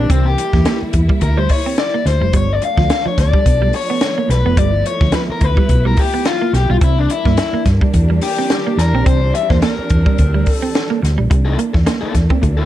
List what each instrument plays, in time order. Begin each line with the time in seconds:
Already playing: string section E3 G3 A#3
0.09 fingered electric bass C2, clean electric guitar C4, overdriven electric guitar C4, string section E4, kick, closed hi-hat
0.26 overdriven electric guitar G4
0.38 muted clean electric guitar stroke, closed hi-hat
0.53 fingered electric bass E2, clean electric guitar A#3, kick, snare
0.65 clean electric guitar A#3, snare, closed hi-hat
0.82 muted fingered electric bass stroke
0.93 fingered electric bass E2, muted clean electric guitar stroke, kick, closed hi-hat
1.09 clean electric guitar G3, kick
1.21 fingered electric bass D2, overdriven electric guitar A#4, kick, closed hi-hat
1.37 clean electric guitar G3, overdriven electric guitar C5
1.49 overdriven electric guitar C#5, muted clean electric guitar stroke, kick, open hi-hat
1.66 clean electric guitar C4
1.78 overdriven electric guitar D5, snare, closed hi-hat
1.94 clean electric guitar A#3
2.06 fingered electric bass D2, overdriven electric guitar C5, muted clean electric guitar stroke, snare, closed hi-hat
2.21 fingered electric bass F1, clean electric guitar G3
2.33 fingered electric bass G1, string section F3 A3 B3 D4, clean electric guitar G3, overdriven electric guitar C#5, kick, closed hi-hat
2.53 overdriven electric guitar D5
2.62 overdriven electric guitar F5, muted clean electric guitar stroke, closed hi-hat
2.77 fingered electric bass D2, clean electric guitar F3, kick, snare
2.90 snare, closed hi-hat
3.06 clean electric guitar F3, overdriven electric guitar C#5, muted fingered electric bass stroke
3.18 fingered electric bass D2, overdriven electric guitar D5, muted clean electric guitar stroke, kick, snare, closed hi-hat
3.33 clean electric guitar G3, kick
3.46 fingered electric bass B1, kick, closed hi-hat
3.62 clean electric guitar G3
3.73 overdriven electric guitar C#5, muted clean electric guitar stroke, open hi-hat
3.90 clean electric guitar B3
4.01 snare, closed hi-hat
4.18 clean electric guitar A#3
4.29 fingered electric bass B1, overdriven electric guitar B4, muted clean electric guitar stroke, snare, closed hi-hat
4.45 fingered electric bass F1, clean electric guitar B3
4.57 fingered electric bass G1, clean electric guitar G3, string section E4, overdriven electric guitar D5, kick, closed hi-hat
4.86 overdriven electric guitar C#5, muted clean electric guitar stroke, closed hi-hat
5.01 fingered electric bass D2, clean electric guitar F3, kick, snare
5.12 clean electric guitar F3, overdriven electric guitar B4, snare, closed hi-hat
5.29 overdriven electric guitar A#4, muted fingered electric bass stroke
5.41 fingered electric bass D2, overdriven electric guitar B4, muted clean electric guitar stroke, kick, closed hi-hat
5.57 clean electric guitar G3, kick
5.69 fingered electric bass B1, kick, closed hi-hat
5.85 clean electric guitar G3, overdriven electric guitar A#4
5.97 overdriven electric guitar G4, muted clean electric guitar stroke, kick, open hi-hat
6.14 clean electric guitar B3
6.25 overdriven electric guitar F4, snare, closed hi-hat
6.42 clean electric guitar A#3
6.53 fingered electric bass B1, overdriven electric guitar G4, muted clean electric guitar stroke, snare, closed hi-hat
6.70 fingered electric bass B1, clean electric guitar G3, overdriven electric guitar F4
6.81 fingered electric bass C2, string section E3 G3 A#3 D4, clean electric guitar C4, overdriven electric guitar E4, kick, closed hi-hat
6.99 overdriven electric guitar D4
7.10 overdriven electric guitar E4, muted clean electric guitar stroke, closed hi-hat
7.25 fingered electric bass G2, clean electric guitar A#3, kick, snare
7.37 snare, closed hi-hat
7.53 clean electric guitar A#3, muted fingered electric bass stroke
7.66 fingered electric bass G2, muted clean electric guitar stroke, kick, snare, closed hi-hat
7.81 clean electric guitar G3, kick
7.94 fingered electric bass E2, kick, closed hi-hat
8.10 clean electric guitar G3
8.22 overdriven electric guitar G4, muted clean electric guitar stroke, open hi-hat
8.38 clean electric guitar C4
8.50 snare, closed hi-hat
8.67 clean electric guitar A#3
8.78 fingered electric bass E2, overdriven electric guitar A#4, muted clean electric guitar stroke, snare, closed hi-hat
8.93 fingered electric bass A#1, clean electric guitar C4
9.06 fingered electric bass C2, clean electric guitar C4, string section C4, overdriven electric guitar C5, kick, closed hi-hat
9.35 overdriven electric guitar E5, muted clean electric guitar stroke, closed hi-hat
9.50 fingered electric bass E2, clean electric guitar A#3, overdriven electric guitar C5, kick, snare
9.62 clean electric guitar A#3, overdriven electric guitar A#4, snare, closed hi-hat
9.79 muted fingered electric bass stroke
9.90 fingered electric bass E2, muted clean electric guitar stroke, kick, closed hi-hat
10.06 clean electric guitar G3, kick
10.18 fingered electric bass D2, kick, closed hi-hat
10.34 clean electric guitar G3
10.46 muted clean electric guitar stroke, kick, open hi-hat
10.51 overdriven electric guitar A4
10.62 clean electric guitar C4
10.75 snare, closed hi-hat
10.90 clean electric guitar A#3
11.02 fingered electric bass D2, muted clean electric guitar stroke, snare, closed hi-hat
11.18 fingered electric bass A#1, clean electric guitar G3
11.30 fingered electric bass C2, string section E3 A3 A#3 D4, clean electric guitar G3, muted overdriven electric guitar stroke, kick, closed hi-hat
11.45 overdriven electric guitar A#3 E4 A4
11.58 clean electric guitar A#3, muted overdriven electric guitar stroke, closed hi-hat
11.73 fingered electric bass E2, muted overdriven electric guitar stroke, muted clean electric guitar stroke, kick, snare
11.86 clean electric guitar A#3, muted overdriven electric guitar stroke, snare, closed hi-hat
12.01 overdriven electric guitar A#3 E4 A4, muted clean electric guitar stroke, muted fingered electric bass stroke
12.14 fingered electric bass E2, muted overdriven electric guitar stroke, kick, snare, closed hi-hat
12.30 clean electric guitar C4, muted overdriven electric guitar stroke, kick
12.42 fingered electric bass D2, muted overdriven electric guitar stroke, kick, closed hi-hat
12.57 overdriven electric guitar A#3 E4 A4